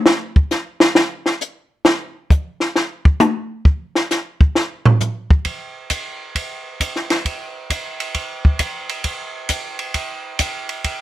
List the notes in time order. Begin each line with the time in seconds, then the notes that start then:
0.06 snare
0.36 kick
0.51 snare, hi-hat pedal
0.80 snare
0.95 snare
1.26 snare
1.41 hi-hat pedal
1.85 snare
2.30 kick, hi-hat pedal
2.60 snare
2.76 snare
3.05 kick
3.20 hi-hat pedal, high tom
3.65 kick
3.95 snare
4.10 snare, hi-hat pedal
4.41 kick
4.55 snare
4.85 floor tom
5.00 floor tom, hi-hat pedal
5.31 kick
5.45 kick, ride
5.90 kick, hi-hat pedal, ride
6.35 kick, ride
6.80 kick, hi-hat pedal, ride
6.96 snare
7.10 snare, ride
7.25 kick, ride
7.70 kick, hi-hat pedal, ride
8.00 ride
8.14 kick, ride
8.45 kick
8.59 kick, hi-hat pedal, ride
8.89 ride
9.04 kick, ride
9.49 kick, hi-hat pedal, ride
9.79 ride
9.94 kick, ride
10.39 kick, hi-hat pedal, ride
10.69 ride
10.84 kick, ride